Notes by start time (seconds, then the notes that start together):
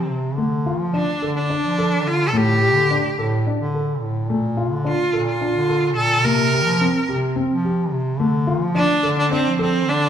Already playing: F3 C4 G4
0.09 C3
0.37 D3 A3
0.66 F4
0.80 F3
0.94 D4
1.21 D3 A4
1.36 D4
1.50 D4
1.64 F3
1.78 A4
2.05 D3 F4
2.28 A4
2.33 A2 A3
2.37 G4
2.62 G4
2.74 D3
2.91 D4
3.17 A2 A4
3.47 D4
3.59 D3
3.74 A4
4.01 A2
4.30 A#2 A3
4.57 F4
4.71 D3
4.85 D4 F4
5.13 A#2 A4
5.29 F4
5.41 D4
5.55 D3
5.69 A4
5.96 A#2 A4
6.24 C3 A#3 A#4
6.53 G4
6.65 F3
6.81 C4
7.08 C3 G4
7.36 C4
7.50 F3
7.65 G4
7.93 C3
8.20 D3 A3
8.47 F4
8.61 F3
8.75 D4
9.03 D3 A4
9.18 D4
9.32 C4 D4
9.45 F3
9.59 C4 A4
9.87 D3 D4